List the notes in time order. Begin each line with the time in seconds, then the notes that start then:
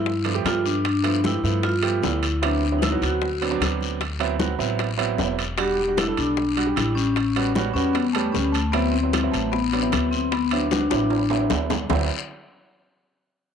Already playing: G2 E4
0.06 high bongo, high conga, long guiro
0.24 F3 A3 B3 D4, high bongo, high conga, high timbale
0.34 F3 A3 B3 G4
0.44 G2 F4, high bongo, low bongo, high conga, high timbale, low timbale, short guiro
0.65 D4, high conga, short guiro
0.85 D4, high bongo, high conga, high timbale, long guiro
1.03 F3 A3 B3 E4, high bongo, high conga, high timbale
1.24 F3 A3 B3 E4 G4, high bongo, high conga, short guiro
1.43 G2 F3 A3 B3 E4, high conga, short guiro
1.63 F4, high bongo, high conga, high timbale, long guiro
1.82 F3 A3 B3 G4, high bongo, high conga, high timbale
2.02 D2 E4, high bongo, low bongo, high conga, low timbale, short guiro
2.23 high timbale, short guiro
2.42 F#3 B3 C4 D4 E4, high bongo, high conga, high timbale, long guiro
2.63 high bongo, high conga
2.72 F#3 B3 C4 E4
2.79 D#4, high bongo, short guiro
2.83 E4, high conga, high timbale
2.91 F#3 B3 C4 F#4
3.02 D2 F#4, high conga, high timbale, short guiro
3.22 high bongo, high conga, long guiro
3.41 F#3 B3 C4 D4, high bongo, high conga, high timbale
3.51 F#3 B3 C4 D4
3.60 D2, high bongo, low bongo, high conga, high timbale, short guiro
3.81 high conga, short guiro
4.00 high bongo, high conga, high timbale, long guiro
4.20 F#3 B3 C4 E4, high bongo, high conga, high timbale
4.39 F#3 B3 C4 F#4, high bongo, high conga, short guiro
4.58 A1 F#3 B3 C4 E4, high conga, short guiro
4.79 high bongo, high conga, high timbale, long guiro
4.97 F#3 B3 C4 E4, high bongo, high conga, high timbale
5.18 E1, high bongo, low bongo, high conga, low timbale, short guiro
5.39 high timbale, short guiro
5.58 G3 D4 F#4 G4, high bongo, high conga, high timbale, long guiro
5.77 high bongo, high conga
5.87 G3 D4 F#4
5.97 E4, high bongo, high conga, high timbale, short guiro
6.08 G3 D4 A4
6.17 B1 D4, high conga, high timbale, short guiro
6.37 high bongo, high conga, long guiro
6.57 G3 D4 F#4, high bongo, high conga, high timbale
6.66 G3 D4 G4
6.76 A1 E4, high bongo, low bongo, high conga, high timbale, short guiro
6.95 C#4, high conga, short guiro
7.16 high bongo, high conga, high timbale, long guiro
7.36 G3 B3 C#4 F#4, high bongo, high conga, high timbale
7.55 G3 B3 C#4 F#4, high bongo, high conga, short guiro
7.73 E2 G3 B3 C#4 F#4, high conga, short guiro
7.93 B3, high bongo, high conga, high timbale, long guiro
8.13 G3 A3 B3 C#4 G4, high bongo, high conga, high timbale
8.32 D2 C#4, high bongo, low bongo, high conga, short guiro
8.52 A3, high timbale, short guiro
8.72 F#3 B3 C4 E4, high bongo, high conga, high timbale, long guiro
8.91 C4, high bongo, high conga
9.03 F#3 B3 C4 E4
9.13 high bongo, high conga, high timbale, short guiro
9.23 F#3 B3 C4 E4
9.32 A1 A3, high conga, high timbale, short guiro
9.52 B3, high bongo, high conga, long guiro
9.73 F#3 B3 C4 D4, high bongo, high conga, high timbale
9.82 F#3 B3 C4 E4
9.92 D2, high bongo, low bongo, high conga, high timbale, short guiro
10.11 C4, high conga, short guiro
10.32 B3, high bongo, high conga, high timbale, long guiro
10.51 F#3 B3 C4 D4 E4, high bongo, high conga, high timbale
10.71 F#3 B3 C4 D4 F#4, high bongo, high conga, short guiro
10.91 A1 F#3 B3 C4 D4 E4, high bongo, high conga, high timbale, short guiro
11.10 high conga, high timbale, long guiro
11.30 F#3 B3 C4 E4, high conga, low timbale
11.50 D2, low bongo, high conga, low timbale, short guiro
11.70 low bongo, high conga, low timbale, short guiro
11.90 D2 F#3 B3 C4 E4, low bongo, low conga, low timbale, long guiro